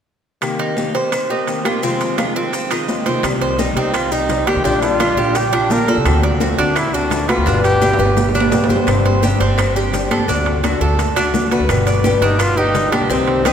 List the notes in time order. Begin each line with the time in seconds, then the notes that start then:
0.41 C3 D#3 A#3 C4 G4, high conga, high timbale, claves, maracas
0.59 D#4, high conga, high timbale
0.76 C3 D#3 A#3 C4 G4, high conga, maracas
0.94 A#3 C4 G4 C5, high timbale, maracas
1.12 muted steel-string acoustic guitar stroke, high conga, high timbale, claves, maracas
1.30 A#3 C4 D#4 G4, high conga
1.47 D#3 A#3 C4 G4, high conga, high timbale, maracas
1.65 D#3 A#3 C4 F4 G4, high conga, high timbale, claves, maracas
1.82 F2 C3 D#3 G#3 C4 F4, high conga, maracas
2.00 high conga, high timbale, maracas
2.18 F2 C3 D#3 G#3 C4 F4, high conga, high timbale, claves, maracas
2.36 D#3 G#3 C4 F4, high conga, maracas
2.53 muted steel-string acoustic guitar stroke, high conga, high timbale, maracas
2.71 D#3 G#3 C4 D#4 F4, high conga, high timbale, claves, maracas
2.88 D#3 G#3 C4 F4, high conga, low timbale, maracas
3.05 C3 D#3 G#3 C4 F4, high conga, high timbale, maracas
3.23 C2 C3 D#3 G3 C4 G4, high bongo, high conga, high timbale, claves, maracas
3.41 C5, high bongo, high conga, high timbale
3.58 C3 D#3 G3 C4 D#4 G4, high bongo, high conga, maracas
3.76 C2 G3 C4 D#4 G4, high conga, high timbale, maracas
3.94 F4, muted steel-string acoustic guitar stroke, high bongo, high conga, high timbale, claves, maracas
4.11 G3 C4 D#4 G4, high bongo, high conga, maracas
4.29 D#3 G3 C4 G4, high bongo, low bongo, high conga, high timbale, maracas
4.47 D#3 G3 C4 G4, high bongo, high conga, high timbale, claves, maracas
4.55 C2
4.64 A#1 D3 G3 D4 F4 G4, high bongo, high conga, maracas
4.82 F4, high bongo, high conga, high timbale, maracas
5.00 D3 G3 D4 F4, high bongo, high conga, high timbale, claves, maracas
5.17 A#1 G3 D4 F4 G4, high conga, maracas
5.35 G4, muted steel-string acoustic guitar stroke, high bongo, high conga, high timbale, maracas
5.53 G3 D4 F4, high bongo, high conga, high timbale, claves
5.70 D3 G3 D4 F4 A#4, high bongo, low bongo, high conga, low timbale, maracas
5.88 G3 D4 F4 A4, high bongo, high conga, high timbale, maracas
5.96 C2
6.05 D2 D3 A3 C4 F#4, high bongo, high conga, high timbale, claves, maracas
6.23 D5, high bongo, high conga, high timbale
6.40 D3 A3 C4 F#4, high bongo, high conga, maracas
6.58 D2 A3 C4 D4 F#4, high timbale, maracas
6.76 E4, muted steel-string acoustic guitar stroke, high bongo, high conga, high timbale, claves, maracas
6.93 A3 C4 D4 F#4, high bongo, high conga, maracas
7.10 D3 A3 C4 F#4, high bongo, low bongo, high conga, high timbale, maracas
7.28 A3 C4 F4 F#4 B4, high bongo, high conga, high timbale, claves, maracas
7.38 D2
7.46 G1 B2 D3 G3 B3 D4 G4, high bongo, high conga, maracas
7.63 G4, high bongo, high conga, high timbale, maracas
7.81 B2 D3 G3 B3 G4, high bongo, high conga, high timbale, claves, maracas
7.93 high timbale
7.99 G1 G3 B3 G4 B4, high bongo, high conga, maracas
8.05 low timbale
8.17 muted steel-string acoustic guitar stroke, low bongo, high conga, low timbale, maracas
8.29 low timbale
8.34 G3 B3 D4 G4, low bongo, high conga, claves, maracas
8.40 low timbale
8.52 B1 D3 G3 B3 G4, low bongo, high conga, low timbale, maracas
8.64 low timbale
8.69 G1 D3 G3 B3 G4 C5, low bongo, high conga, maracas
8.76 low timbale
8.87 G1 C3 G3 C4 D4 G4, high bongo, high conga, high timbale, claves, maracas
9.05 C5, high bongo, high conga, high timbale
9.23 C3 G3 C4 D4 G4, high bongo, high conga, maracas
9.40 G1 C4 D4 G4, high conga, high timbale, maracas
9.58 muted steel-string acoustic guitar stroke, high bongo, high conga, high timbale, claves, maracas
9.75 C4 D4 G4, high bongo, high conga, maracas
9.93 G3 C4 D4 G4, high bongo, low bongo, high conga, high timbale, maracas
10.10 G3 C4 D4 G4 A4, high bongo, high conga, high timbale, claves, maracas
10.19 G1
10.28 D2 D3 A3 D4 F#4, high bongo, high conga, maracas
10.46 high bongo, high conga, high timbale
10.63 D3 A3 D4 F#4, high bongo, high conga, high timbale, claves, maracas
10.80 D2 A3 D4 F#4 A4, high conga, maracas
10.99 muted steel-string acoustic guitar stroke, high bongo, high conga, high timbale, maracas
11.16 A3 D4 F#4, high bongo, high conga, high timbale, claves, maracas
11.34 D3 A3 D4 F#4, high bongo, low bongo, high conga, maracas
11.51 A3 D4 F#4 B4, high bongo, high conga, high timbale, maracas
11.60 D2
11.69 G1 B2 D3 G3 B3 G4, high bongo, high conga, high timbale, claves, maracas
11.87 D5, high bongo, high conga, high timbale, maracas
12.04 B2 D3 G3 B3 G4, high bongo, high conga, maracas
12.21 G1 G3 B3 D4 D#4 G4, high conga, high timbale, maracas
12.39 F4, muted steel-string acoustic guitar stroke, high bongo, high conga, high timbale, claves, maracas
12.57 G3 B3 D#4 G4, high bongo, high conga
12.74 D3 G3 B3 G4, high bongo, low bongo, high timbale, maracas
12.92 D3 G3 B3 D4 G4, high bongo, high conga, high timbale, claves, maracas
13.01 B1
13.10 C2 C3 D#3 G3 C4 G4, high bongo, high conga, maracas
13.27 high bongo, high conga, high timbale
13.45 C3 D#3 G3 C4 D#4 G4, high bongo, high conga, high timbale, claves, maracas